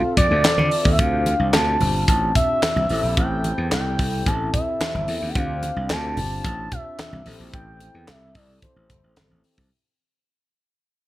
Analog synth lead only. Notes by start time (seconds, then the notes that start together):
Already playing: F4
0.17 D5
0.92 E5
0.99 F5
1.54 A5
2.09 A5
2.36 E5
3.17 G5
3.72 G5
4.26 A5
4.54 E5
5.29 G5
5.36 F5
5.90 A5
6.45 A5
6.72 E5
7.54 G5
8.08 E5
8.36 D5
8.63 C5